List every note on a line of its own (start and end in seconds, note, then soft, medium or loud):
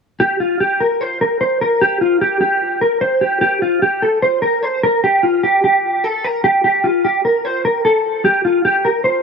0.20 0.40 G4 loud
0.40 0.60 F4 medium
0.60 0.80 G4 medium
0.80 1.01 A#4 medium
1.01 1.21 C5 medium
1.21 1.40 A#4 medium
1.41 1.61 C5 medium
1.61 1.81 A#4 medium
1.81 2.01 G4 medium
2.01 2.21 F4 medium
2.21 2.40 G4 medium
2.41 2.79 G4 medium
2.81 3.01 A#4 medium
3.01 3.22 C5 medium
3.21 3.40 G4 medium
3.41 3.61 G4 loud
3.62 3.82 F4 medium
3.82 4.02 G4 medium
4.02 4.22 A4 medium
4.22 4.42 C5 medium
4.42 4.63 A#4 medium
4.63 4.83 C5 medium
4.83 5.03 A#4 medium
5.04 5.23 G4 loud
5.23 5.43 F4 medium
5.43 5.63 G4 medium
5.64 6.04 G4 medium
6.04 6.24 A4 medium
6.24 6.44 A#4 medium
6.44 6.63 G4 medium
6.64 6.84 G4 medium
6.84 7.04 F4 medium
7.05 7.24 G4 medium
7.25 7.45 A#4 medium
7.45 7.64 C5 medium
7.65 7.84 A#4 medium
7.85 8.22 A4 medium
8.25 8.44 G4 medium
8.45 8.64 F4 medium
8.65 8.85 G4 medium
8.85 9.04 A#4 medium
9.04 9.22 C5 medium